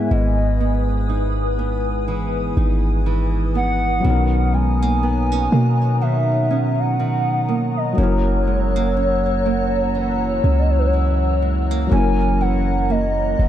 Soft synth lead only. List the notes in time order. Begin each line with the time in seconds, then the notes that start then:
Already playing: E5
0.12 D#5
3.56 F#5
4.54 G#5
6.01 E5
6.79 F#5
7.77 D#5
7.98 C#5
10.59 D#5
10.70 C#5
10.79 B4
10.86 C#5
11.92 G#5
12.41 F#5
12.91 D#5